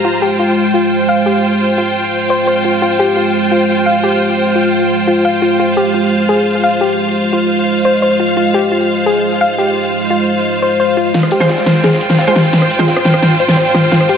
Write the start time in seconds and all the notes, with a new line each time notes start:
Already playing: G#3 F4 C5 A#5
0.05 F4 C5
0.22 G4
0.27 G5
0.39 F4
0.74 F4
1.09 F5
1.26 G4
1.78 F4
2.30 C5
2.47 C5
2.65 F4
2.82 F4
2.99 G4
3.17 F4
3.51 F4
3.86 F5
4.03 G4
4.55 F4
5.07 F4
5.25 F5
5.42 F4
5.59 F4 D#5
5.77 G4
5.82 F5
5.94 F4
6.29 G#4
6.64 F5
6.81 G4
7.33 F4
7.85 C5
8.02 C5
8.20 F4
8.37 F4
8.54 G4
8.72 F4
9.06 G#4
9.41 F5
9.58 G4
10.10 F4
10.62 C5
10.80 C5
10.97 F4
11.14 G#3 F4, snare, closed hi-hat
11.23 cross-stick
11.28 G4 C5 G5, closed hi-hat
11.40 G#3 F4 C5, snare
11.49 F4, snare, closed hi-hat
11.58 snare
11.66 snare, closed hi-hat
11.75 snare
11.84 G#4, snare, closed hi-hat
11.93 snare
12.01 closed hi-hat
12.10 snare
12.18 F5, snare, closed hi-hat
12.27 G#3 F4 C5, closed hi-hat
12.36 G4, snare, closed hi-hat, open hi-hat
12.53 snare, closed hi-hat
12.62 cross-stick, closed hi-hat
12.71 closed hi-hat
12.79 G#3 F4 C5, snare
12.88 F4, snare, closed hi-hat
12.96 cross-stick, closed hi-hat
13.04 snare, closed hi-hat
13.14 cross-stick
13.22 snare, closed hi-hat
13.39 C5, closed hi-hat
13.49 snare, closed hi-hat
13.57 C5, snare, closed hi-hat
13.66 closed hi-hat
13.74 F4, cross-stick, snare, closed hi-hat
13.91 F4, snare, closed hi-hat
14.01 cross-stick
14.09 G4, closed hi-hat